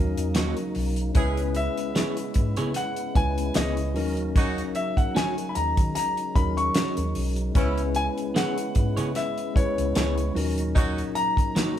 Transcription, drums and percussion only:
0.17 closed hi-hat
0.35 snare, closed hi-hat
0.57 closed hi-hat
0.75 open hi-hat
0.96 closed hi-hat
1.15 kick, closed hi-hat
1.37 closed hi-hat
1.55 closed hi-hat
1.77 closed hi-hat
1.96 snare, closed hi-hat
2.17 closed hi-hat
2.34 kick, closed hi-hat
2.56 closed hi-hat
2.74 snare, closed hi-hat
2.96 closed hi-hat
3.15 kick, closed hi-hat
3.38 closed hi-hat
3.54 snare, closed hi-hat
3.77 closed hi-hat
3.96 open hi-hat
4.17 closed hi-hat
4.36 kick, closed hi-hat
4.58 closed hi-hat
4.75 closed hi-hat
4.97 kick, closed hi-hat
5.16 snare, closed hi-hat
5.38 closed hi-hat
5.55 closed hi-hat
5.77 kick, closed hi-hat
5.95 snare, closed hi-hat
6.17 closed hi-hat
6.36 kick, closed hi-hat
6.58 closed hi-hat
6.74 snare, closed hi-hat
6.97 closed hi-hat
7.15 open hi-hat
7.36 closed hi-hat
7.55 kick, closed hi-hat
7.78 closed hi-hat
7.95 closed hi-hat
8.18 closed hi-hat
8.36 snare, closed hi-hat
8.58 closed hi-hat
8.75 kick, closed hi-hat
8.97 closed hi-hat
9.15 snare, closed hi-hat
9.38 closed hi-hat
9.56 kick, closed hi-hat
9.78 closed hi-hat
9.95 snare, closed hi-hat
10.18 closed hi-hat
10.36 open hi-hat
10.58 closed hi-hat
10.76 kick, closed hi-hat
10.98 closed hi-hat
11.15 closed hi-hat
11.37 kick, closed hi-hat
11.56 snare, closed hi-hat

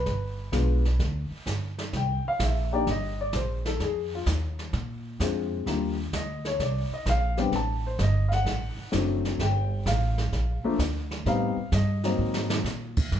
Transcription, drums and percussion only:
0.06 brush sweep, kick, snare
0.53 kick, snare, hi-hat pedal
0.85 snare
0.99 brush sweep, kick, snare
1.46 kick, snare, hi-hat pedal
1.78 snare
1.93 brush sweep, kick, snare
2.40 kick, snare, hi-hat pedal
2.87 brush sweep, kick, snare
3.33 kick, snare, hi-hat pedal
3.65 snare
3.80 brush sweep, kick, snare
4.26 kick, snare, hi-hat pedal
4.59 snare
4.73 brush sweep, kick, snare
5.20 kick, snare, hi-hat pedal
5.67 brush sweep, kick, snare
6.13 kick, snare, hi-hat pedal
6.45 snare
6.60 brush sweep, kick, snare
7.06 kick, snare, hi-hat pedal
7.37 snare
7.52 brush sweep, kick, snare
7.99 kick, snare, hi-hat pedal
8.31 snare
8.46 brush sweep, kick, snare
8.92 kick, snare, hi-hat pedal
9.25 snare
9.39 brush sweep, kick, snare
9.86 kick, snare, hi-hat pedal
10.18 snare
10.33 brush sweep, kick, snare
10.79 kick, snare, hi-hat pedal
11.11 snare
11.26 brush sweep, kick, snare
11.72 kick, snare, hi-hat pedal
12.04 snare
12.34 snare
12.50 snare
12.65 snare, hi-hat pedal
12.97 kick, crash
13.12 brush sweep, kick, snare

